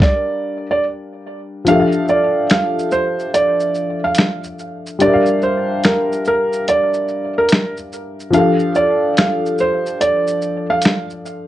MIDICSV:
0, 0, Header, 1, 4, 480
1, 0, Start_track
1, 0, Tempo, 833333
1, 961, Time_signature, 4, 2, 24, 8
1, 6609, End_track
2, 0, Start_track
2, 0, Title_t, "Felt piano"
2, 0, Program_c, 0, 0
2, 8, Note_on_c, 0, 74, 77
2, 379, Note_off_c, 0, 74, 0
2, 408, Note_on_c, 0, 74, 73
2, 478, Note_off_c, 0, 74, 0
2, 969, Note_on_c, 0, 77, 98
2, 1182, Note_off_c, 0, 77, 0
2, 1207, Note_on_c, 0, 74, 77
2, 1421, Note_off_c, 0, 74, 0
2, 1448, Note_on_c, 0, 77, 79
2, 1662, Note_off_c, 0, 77, 0
2, 1683, Note_on_c, 0, 72, 79
2, 1899, Note_off_c, 0, 72, 0
2, 1925, Note_on_c, 0, 74, 82
2, 2298, Note_off_c, 0, 74, 0
2, 2328, Note_on_c, 0, 77, 73
2, 2541, Note_off_c, 0, 77, 0
2, 2889, Note_on_c, 0, 74, 98
2, 3102, Note_off_c, 0, 74, 0
2, 3128, Note_on_c, 0, 72, 84
2, 3341, Note_off_c, 0, 72, 0
2, 3368, Note_on_c, 0, 70, 79
2, 3582, Note_off_c, 0, 70, 0
2, 3615, Note_on_c, 0, 70, 87
2, 3825, Note_off_c, 0, 70, 0
2, 3851, Note_on_c, 0, 74, 81
2, 4221, Note_off_c, 0, 74, 0
2, 4250, Note_on_c, 0, 70, 77
2, 4462, Note_off_c, 0, 70, 0
2, 4806, Note_on_c, 0, 77, 90
2, 5021, Note_off_c, 0, 77, 0
2, 5045, Note_on_c, 0, 74, 79
2, 5260, Note_off_c, 0, 74, 0
2, 5288, Note_on_c, 0, 77, 80
2, 5502, Note_off_c, 0, 77, 0
2, 5531, Note_on_c, 0, 72, 84
2, 5743, Note_off_c, 0, 72, 0
2, 5764, Note_on_c, 0, 74, 83
2, 6137, Note_off_c, 0, 74, 0
2, 6162, Note_on_c, 0, 77, 77
2, 6377, Note_off_c, 0, 77, 0
2, 6609, End_track
3, 0, Start_track
3, 0, Title_t, "Upright piano"
3, 0, Program_c, 1, 0
3, 0, Control_c, 1, 64, 127
3, 0, Note_on_c, 1, 55, 65
3, 0, Note_on_c, 1, 62, 59
3, 0, Note_on_c, 1, 67, 55
3, 0, Note_on_c, 1, 70, 61
3, 0, Note_on_c, 1, 77, 73
3, 8, Control_c, 1, 64, 0
3, 934, Note_off_c, 1, 55, 0
3, 941, Note_off_c, 1, 62, 0
3, 946, Note_off_c, 1, 67, 0
3, 949, Note_on_c, 1, 53, 60
3, 953, Note_off_c, 1, 70, 0
3, 959, Note_off_c, 1, 77, 0
3, 962, Note_on_c, 1, 62, 54
3, 975, Note_on_c, 1, 67, 58
3, 986, Note_on_c, 1, 69, 60
3, 999, Note_on_c, 1, 76, 55
3, 1029, Note_off_c, 1, 76, 0
3, 1035, Note_on_c, 1, 77, 71
3, 1059, Control_c, 1, 64, 127
3, 2852, Note_off_c, 1, 53, 0
3, 2859, Note_off_c, 1, 62, 0
3, 2865, Note_off_c, 1, 67, 0
3, 2871, Note_off_c, 1, 69, 0
3, 2873, Note_on_c, 1, 55, 59
3, 2885, Note_on_c, 1, 62, 60
3, 2889, Control_c, 1, 64, 0
3, 2895, Note_off_c, 1, 77, 0
3, 2897, Note_on_c, 1, 67, 59
3, 2910, Note_on_c, 1, 70, 58
3, 2921, Note_on_c, 1, 76, 55
3, 2951, Note_off_c, 1, 76, 0
3, 2958, Note_on_c, 1, 77, 71
3, 2986, Control_c, 1, 64, 127
3, 4774, Note_off_c, 1, 55, 0
3, 4781, Note_off_c, 1, 62, 0
3, 4785, Note_on_c, 1, 53, 66
3, 4786, Note_off_c, 1, 67, 0
3, 4793, Note_off_c, 1, 70, 0
3, 4797, Note_on_c, 1, 62, 59
3, 4809, Note_on_c, 1, 67, 57
3, 4810, Control_c, 1, 64, 0
3, 4817, Note_off_c, 1, 77, 0
3, 4821, Note_on_c, 1, 69, 61
3, 4834, Note_on_c, 1, 77, 67
3, 4896, Control_c, 1, 64, 127
3, 6609, Note_off_c, 1, 53, 0
3, 6609, Note_off_c, 1, 62, 0
3, 6609, Note_off_c, 1, 67, 0
3, 6609, Note_off_c, 1, 69, 0
3, 6609, Note_off_c, 1, 77, 0
3, 6609, End_track
4, 0, Start_track
4, 0, Title_t, "Drums"
4, 0, Note_on_c, 9, 36, 97
4, 10, Note_on_c, 9, 38, 82
4, 57, Note_off_c, 9, 36, 0
4, 67, Note_off_c, 9, 38, 0
4, 960, Note_on_c, 9, 42, 62
4, 960, Note_on_c, 9, 82, 62
4, 1018, Note_off_c, 9, 42, 0
4, 1018, Note_off_c, 9, 82, 0
4, 1108, Note_on_c, 9, 82, 37
4, 1165, Note_off_c, 9, 82, 0
4, 1201, Note_on_c, 9, 82, 46
4, 1259, Note_off_c, 9, 82, 0
4, 1440, Note_on_c, 9, 42, 57
4, 1440, Note_on_c, 9, 82, 61
4, 1446, Note_on_c, 9, 26, 87
4, 1448, Note_on_c, 9, 38, 115
4, 1497, Note_off_c, 9, 42, 0
4, 1497, Note_off_c, 9, 82, 0
4, 1503, Note_off_c, 9, 26, 0
4, 1505, Note_off_c, 9, 38, 0
4, 1607, Note_on_c, 9, 82, 54
4, 1665, Note_off_c, 9, 82, 0
4, 1678, Note_on_c, 9, 82, 47
4, 1736, Note_off_c, 9, 82, 0
4, 1841, Note_on_c, 9, 82, 50
4, 1898, Note_off_c, 9, 82, 0
4, 1927, Note_on_c, 9, 42, 64
4, 1927, Note_on_c, 9, 82, 65
4, 1984, Note_off_c, 9, 42, 0
4, 1984, Note_off_c, 9, 82, 0
4, 2075, Note_on_c, 9, 82, 52
4, 2133, Note_off_c, 9, 82, 0
4, 2158, Note_on_c, 9, 82, 40
4, 2216, Note_off_c, 9, 82, 0
4, 2389, Note_on_c, 9, 42, 74
4, 2389, Note_on_c, 9, 82, 72
4, 2410, Note_on_c, 9, 26, 86
4, 2412, Note_on_c, 9, 38, 113
4, 2446, Note_off_c, 9, 42, 0
4, 2446, Note_off_c, 9, 82, 0
4, 2467, Note_off_c, 9, 26, 0
4, 2469, Note_off_c, 9, 38, 0
4, 2556, Note_on_c, 9, 82, 44
4, 2613, Note_off_c, 9, 82, 0
4, 2643, Note_on_c, 9, 82, 45
4, 2701, Note_off_c, 9, 82, 0
4, 2802, Note_on_c, 9, 82, 49
4, 2859, Note_off_c, 9, 82, 0
4, 2882, Note_on_c, 9, 42, 60
4, 2882, Note_on_c, 9, 82, 65
4, 2939, Note_off_c, 9, 42, 0
4, 2939, Note_off_c, 9, 82, 0
4, 3028, Note_on_c, 9, 82, 39
4, 3086, Note_off_c, 9, 82, 0
4, 3120, Note_on_c, 9, 82, 49
4, 3178, Note_off_c, 9, 82, 0
4, 3361, Note_on_c, 9, 42, 59
4, 3361, Note_on_c, 9, 82, 61
4, 3367, Note_on_c, 9, 26, 90
4, 3369, Note_on_c, 9, 38, 114
4, 3419, Note_off_c, 9, 42, 0
4, 3419, Note_off_c, 9, 82, 0
4, 3425, Note_off_c, 9, 26, 0
4, 3427, Note_off_c, 9, 38, 0
4, 3527, Note_on_c, 9, 82, 52
4, 3585, Note_off_c, 9, 82, 0
4, 3600, Note_on_c, 9, 82, 48
4, 3657, Note_off_c, 9, 82, 0
4, 3760, Note_on_c, 9, 82, 49
4, 3818, Note_off_c, 9, 82, 0
4, 3847, Note_on_c, 9, 42, 65
4, 3847, Note_on_c, 9, 82, 64
4, 3905, Note_off_c, 9, 42, 0
4, 3905, Note_off_c, 9, 82, 0
4, 3996, Note_on_c, 9, 82, 54
4, 4053, Note_off_c, 9, 82, 0
4, 4079, Note_on_c, 9, 82, 39
4, 4137, Note_off_c, 9, 82, 0
4, 4312, Note_on_c, 9, 42, 71
4, 4312, Note_on_c, 9, 82, 69
4, 4333, Note_on_c, 9, 26, 93
4, 4335, Note_on_c, 9, 38, 114
4, 4370, Note_off_c, 9, 42, 0
4, 4370, Note_off_c, 9, 82, 0
4, 4391, Note_off_c, 9, 26, 0
4, 4393, Note_off_c, 9, 38, 0
4, 4476, Note_on_c, 9, 82, 42
4, 4534, Note_off_c, 9, 82, 0
4, 4566, Note_on_c, 9, 82, 48
4, 4623, Note_off_c, 9, 82, 0
4, 4724, Note_on_c, 9, 82, 48
4, 4781, Note_off_c, 9, 82, 0
4, 4802, Note_on_c, 9, 42, 64
4, 4802, Note_on_c, 9, 82, 63
4, 4859, Note_off_c, 9, 42, 0
4, 4859, Note_off_c, 9, 82, 0
4, 4950, Note_on_c, 9, 82, 39
4, 5008, Note_off_c, 9, 82, 0
4, 5040, Note_on_c, 9, 82, 50
4, 5097, Note_off_c, 9, 82, 0
4, 5282, Note_on_c, 9, 42, 59
4, 5282, Note_on_c, 9, 82, 61
4, 5288, Note_on_c, 9, 26, 95
4, 5290, Note_on_c, 9, 38, 108
4, 5340, Note_off_c, 9, 42, 0
4, 5340, Note_off_c, 9, 82, 0
4, 5346, Note_off_c, 9, 26, 0
4, 5348, Note_off_c, 9, 38, 0
4, 5448, Note_on_c, 9, 82, 54
4, 5505, Note_off_c, 9, 82, 0
4, 5518, Note_on_c, 9, 82, 48
4, 5576, Note_off_c, 9, 82, 0
4, 5680, Note_on_c, 9, 82, 46
4, 5737, Note_off_c, 9, 82, 0
4, 5765, Note_on_c, 9, 42, 63
4, 5765, Note_on_c, 9, 82, 67
4, 5823, Note_off_c, 9, 42, 0
4, 5823, Note_off_c, 9, 82, 0
4, 5916, Note_on_c, 9, 82, 54
4, 5974, Note_off_c, 9, 82, 0
4, 5999, Note_on_c, 9, 82, 42
4, 6057, Note_off_c, 9, 82, 0
4, 6229, Note_on_c, 9, 42, 69
4, 6229, Note_on_c, 9, 82, 72
4, 6250, Note_on_c, 9, 26, 89
4, 6252, Note_on_c, 9, 38, 112
4, 6287, Note_off_c, 9, 42, 0
4, 6287, Note_off_c, 9, 82, 0
4, 6308, Note_off_c, 9, 26, 0
4, 6310, Note_off_c, 9, 38, 0
4, 6394, Note_on_c, 9, 82, 42
4, 6451, Note_off_c, 9, 82, 0
4, 6484, Note_on_c, 9, 82, 48
4, 6541, Note_off_c, 9, 82, 0
4, 6609, End_track
0, 0, End_of_file